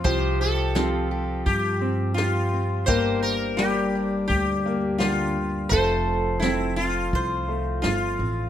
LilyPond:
<<
  \new Staff \with { instrumentName = "Mandolin" } { \time 4/4 \key g \dorian \tempo 4 = 85 g'4 f'2. | g'1 | a'2 c''4. r8 | }
  \new Staff \with { instrumentName = "Sitar" } { \time 4/4 \key g \dorian c''8 a'4. g'4 f'4 | c''8 bes'8 g'4 g'4 f'4 | c''4 e'8 f'4. f'4 | }
  \new Staff \with { instrumentName = "Steel-string acoustic guitar" } { \time 4/4 \key g \dorian << { g'4. g'2 c'8 | bes'4. d'2~ d'8 | a'4. c'2 c'8 | } \\ { <c f>4 f2. | g,4 g2 d8 r8 | f4 c'8 r2 r8 | } >> }
  \new Staff \with { instrumentName = "Upright piano" } { \time 4/4 \key g \dorian f4 <c' f' g'>4. c'8 g'4 | bes4 <bes d' g'>4. bes8 g'4 | a4 <a c'>4. a8 f'4 | }
  \new Staff \with { instrumentName = "Upright bass" } { \clef bass \time 4/4 \key g \dorian c,2 g,2 | g,,2 d,2 | f,,2 c,4 g,,8 a,,8 | }
  \new DrumStaff \with { instrumentName = "Drums" } \drummode { \time 4/4 bd4 sn4 bd4 sn4 | bd4 sn4 bd4 sn4 | bd4 sn4 bd4 sn4 | }
>>